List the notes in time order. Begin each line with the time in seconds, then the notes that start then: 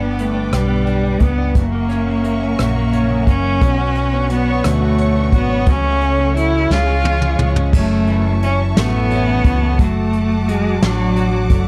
Already playing: G1 G2 B3 D4 B4 D5 G5 D6
0.01 D3
0.18 A3 B3, closed hi-hat
0.34 D4
0.51 B1 G2 G3, cross-stick, closed hi-hat
0.68 B3
0.85 D4, closed hi-hat
1.20 C#2 B3, kick, closed hi-hat
1.38 D4
1.55 F#1 F#2 A#3 A#4 E5 F#5 C#6, kick, closed hi-hat
1.72 A#3
1.89 C#4, cross-stick, closed hi-hat
2.07 C#3
2.24 A#3, closed hi-hat
2.41 C#4
2.59 A#1 F#2 A#3, cross-stick, closed hi-hat
2.76 A#3
2.93 C#4, closed hi-hat
3.10 C#3
3.26 F#1 A#3 C#4, kick, closed hi-hat
3.44 C#4
3.60 B1 B2 F#3 C#4 D4 B4 C#5 C#6, kick, closed hi-hat
3.64 F#4
3.78 C#4 F#4
3.95 C#5, closed hi-hat
4.12 B3 C#4 D4 F#4
4.30 F#3 B3 C#4 D4 F#4, closed hi-hat
4.48 C#5
4.64 D2 B2 F#3 A3 C#4 D4 F#4, cross-stick, closed hi-hat
4.81 C#4 D4 F#4
4.98 C#5, closed hi-hat
5.16 B3 C#4 D4 F#4
5.32 G#1 F#3 B3 C#4 D4 F#4, kick, closed hi-hat
5.50 C#5
5.66 C#2 C#3 F#3 A3 C#4 F#4 A4 C#5, kick, closed hi-hat
5.84 A3 C#4 F#4
6.00 C#4, closed hi-hat
6.18 F#3 C#4 F#4
6.22 A3
6.35 F#3 A3 C#4 E4 F#4, closed hi-hat
6.53 C#4
6.70 C#2 C#3 G#3 C#4 F4 G#4 C#5 F5 C#6, snare
6.87 G#3 C#4 F4 G#4
7.04 C#4, high tom
7.21 F3 C#4 F4 G#4, mid tom
7.38 C#2 G#3 C#4 F4 G#4, mid tom
7.56 C#4, floor tom
7.73 F#1 F#2 A3 C#4 F#4 E5 A5 C#6, kick, crash
8.07 E3, closed hi-hat
8.43 C#4, closed hi-hat
8.76 A1 A3 B3, snare, closed hi-hat
9.11 C#4, closed hi-hat
9.44 C#2 E3, kick, closed hi-hat
9.79 F#1 F#3 A3 F#4 F#5 D6, kick, closed hi-hat
10.13 closed hi-hat
10.48 G#3 F#4, closed hi-hat
10.81 A1 F#3 D4, snare, closed hi-hat
11.16 F#4, closed hi-hat
11.50 F#1 A3, kick, closed hi-hat